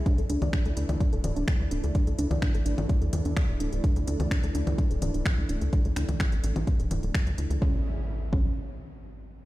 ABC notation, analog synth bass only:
X:1
M:4/4
L:1/16
Q:1/4=127
K:Dlyd
V:1 name="Analog synth bass" clef=bass
z D,, D,, D,, z D,, D,, D,, z D,,, D,,, D,,, z D,, D,,, D,, | z D,, D,, D,, z A,,, A,,, A,,, z E,, E,, E,, z D,,, D,,, D,,, | z D,, D,, D,, z D,, D,, D,, z D,,, D,,, D,,, z D,, D,,, D,, | z D,, D,, D,, z A,,, A,,, A,,, z D,,, D,,, D,,, z D,, D,, D,, |
C,, z4 z C,,2 z8 |]